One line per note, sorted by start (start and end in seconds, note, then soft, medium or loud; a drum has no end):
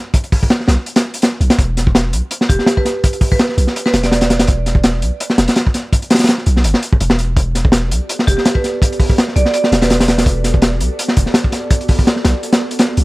0.14 kick loud
0.14 closed hi-hat medium
0.24 closed hi-hat soft
0.32 kick medium
0.32 open hi-hat medium
0.43 kick medium
0.50 snare loud
0.50 closed hi-hat medium
0.60 snare soft
0.68 0.77 B1 medium
0.68 snare medium
0.68 closed hi-hat medium
0.86 closed hi-hat medium
0.96 snare loud
0.96 closed hi-hat medium
1.14 closed hi-hat medium
1.22 snare loud
1.22 closed hi-hat medium
1.41 1.49 B1 medium
1.41 closed hi-hat medium
1.50 snare loud
1.50 closed hi-hat medium
1.58 2.14 E1 medium
1.58 kick loud
1.58 closed hi-hat medium
1.77 snare soft
1.77 closed hi-hat medium
1.87 kick medium
1.95 snare loud
1.95 closed hi-hat medium
2.13 2.22 B1 medium
2.13 closed hi-hat medium
2.31 closed hi-hat medium
2.41 snare medium
2.49 2.58 E1 medium
2.49 2.55 G4 medium
2.49 kick medium
2.49 closed hi-hat medium
2.59 2.65 G4 medium
2.59 snare soft
2.66 snare loud
2.66 closed hi-hat medium
2.77 2.99 B4 medium
2.77 kick medium
2.85 snare soft
2.85 closed hi-hat medium
3.04 kick medium
3.04 closed hi-hat medium
3.13 closed hi-hat soft
3.21 kick medium
3.21 open hi-hat medium
3.32 3.53 B4 medium
3.32 kick medium
3.39 snare loud
3.39 closed hi-hat medium
3.49 snare soft
3.58 3.66 B1 medium
3.58 closed hi-hat medium
3.67 snare soft
3.76 closed hi-hat medium
3.86 4.02 B4 medium
3.86 snare medium
3.94 4.47 E1 medium
3.94 snare loud
3.94 closed hi-hat medium
4.03 4.09 D5 medium
4.03 snare medium
4.03 closed hi-hat medium
4.12 4.18 D5 medium
4.12 snare loud
4.12 closed hi-hat medium
4.21 snare medium
4.21 closed hi-hat medium
4.30 snare medium
4.30 closed hi-hat medium
4.39 snare medium
4.39 closed hi-hat medium
4.47 5.04 E1 medium
4.47 kick loud
4.47 closed hi-hat medium
4.66 snare soft
4.66 closed hi-hat medium
4.75 kick medium
4.84 snare loud
4.84 closed hi-hat medium
5.02 5.11 B1 medium
5.02 closed hi-hat medium
5.20 closed hi-hat medium
5.30 snare medium
5.38 5.47 E1 medium
5.38 snare loud
5.38 closed hi-hat medium
5.48 snare medium
5.48 closed hi-hat medium
5.56 snare loud
5.56 closed hi-hat medium
5.67 kick medium
5.74 snare soft
5.74 closed hi-hat medium
5.93 kick medium
5.93 closed hi-hat medium
6.02 closed hi-hat soft
6.10 snare medium
6.10 closed hi-hat medium
6.14 snare medium
6.14 closed hi-hat medium
6.19 snare medium
6.19 closed hi-hat medium
6.24 snare medium
6.24 closed hi-hat medium
6.27 snare loud
6.27 closed hi-hat medium
6.38 snare soft
6.46 6.66 B1 medium
6.46 closed hi-hat medium
6.57 snare soft
6.64 6.74 G1 medium
6.64 closed hi-hat medium
6.74 snare medium
6.83 closed hi-hat medium
6.93 kick loud
7.00 7.36 E1 loud
7.00 closed hi-hat medium
7.10 snare loud
7.19 closed hi-hat medium
7.36 7.93 E1 medium
7.36 kick loud
7.36 closed hi-hat medium
7.55 snare soft
7.55 closed hi-hat medium
7.65 kick medium
7.72 snare loud
7.72 closed hi-hat medium
7.91 8.00 B1 medium
7.91 closed hi-hat medium
8.09 closed hi-hat medium
8.19 snare soft
8.27 8.36 E1 medium
8.27 8.34 G4 medium
8.27 kick medium
8.27 closed hi-hat medium
8.37 8.42 G4 medium
8.37 snare soft
8.45 snare loud
8.45 closed hi-hat medium
8.55 8.77 B4 medium
8.55 kick medium
8.64 snare soft
8.64 closed hi-hat medium
8.82 kick loud
8.82 closed hi-hat medium
8.92 closed hi-hat soft
9.00 kick medium
9.00 open hi-hat medium
9.09 kick loud
9.18 snare loud
9.18 closed hi-hat medium
9.28 snare soft
9.36 9.45 B1 medium
9.36 9.52 D5 medium
9.36 closed hi-hat medium
9.45 snare soft
9.54 9.76 D5 medium
9.54 closed hi-hat medium
9.64 snare medium
9.72 10.25 E1 medium
9.72 snare loud
9.72 closed hi-hat medium
9.82 10.18 B4 medium
9.82 snare loud
9.82 closed hi-hat medium
9.90 snare loud
9.90 closed hi-hat medium
10.00 snare loud
10.00 closed hi-hat medium
10.08 snare loud
10.08 closed hi-hat medium
10.18 snare medium
10.18 closed hi-hat medium
10.26 10.82 E1 loud
10.26 kick loud
10.26 closed hi-hat medium
10.44 snare soft
10.44 closed hi-hat medium
10.54 kick medium
10.62 snare loud
10.62 closed hi-hat medium
10.80 10.89 B1 medium
10.80 closed hi-hat medium
10.99 closed hi-hat medium
11.08 snare medium
11.17 11.26 E1 medium
11.17 kick medium
11.17 closed hi-hat medium
11.26 snare soft
11.34 snare loud
11.34 closed hi-hat medium
11.44 kick medium
11.52 snare soft
11.52 closed hi-hat medium
11.71 kick loud
11.71 closed hi-hat medium
11.81 closed hi-hat soft
11.88 kick medium
11.88 open hi-hat medium
11.99 kick medium
12.07 snare loud
12.07 closed hi-hat medium
12.16 snare soft
12.24 12.34 B1 medium
12.24 snare loud
12.24 closed hi-hat medium
12.43 closed hi-hat medium
12.52 snare loud
12.52 closed hi-hat medium
12.71 closed hi-hat medium
12.79 snare medium
12.79 closed hi-hat medium
12.97 13.04 B1 medium
12.97 closed hi-hat medium